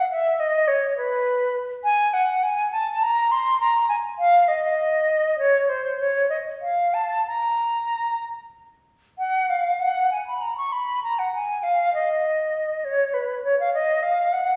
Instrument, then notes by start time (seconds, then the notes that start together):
flute
Already playing: F#5
0.11 E5
0.40 D#5
0.68 C#5
0.97 B4
1.84 G#5
2.13 F#5
2.43 G#5
2.72 A5
3.02 A#5
3.31 C6
3.60 A#5
3.89 G#5
4.19 F5
4.48 D#5
5.38 C#5
5.69 C5
6.00 C#5
6.30 D#5
6.61 F5
6.94 A5
7.27 A#5
9.18 F#5
9.50 F5
9.79 F#5
10.11 G#5
10.27 B5
10.41 A#5
10.57 C#6
10.72 B5
11.03 A#5
11.19 F#5
11.34 G#5
11.63 F5
11.94 D#5
12.84 C#5
13.14 B4
13.44 C#5
13.60 F5
13.74 D#5
14.03 F5
14.33 F#5